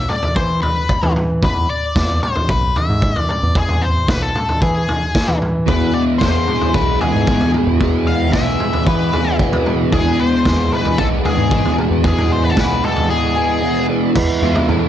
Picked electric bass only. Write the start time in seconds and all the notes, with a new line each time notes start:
0.36 E3
1.03 E3
1.43 E2
1.95 E2
2.49 B1
2.89 G#2
3.43 E2
3.55 E2
4.09 B1
4.62 E3
5.28 E3
5.68 E2
6.21 E2
6.75 B1
7.14 G#2
7.67 E2
7.81 E2
8.34 B1
8.87 E3
9.52 E3
9.93 E2
10.45 E2
10.98 B1
11.38 G#2
11.90 E2
12.04 E2
12.57 B1
14.16 E2
14.42 E2
14.69 E2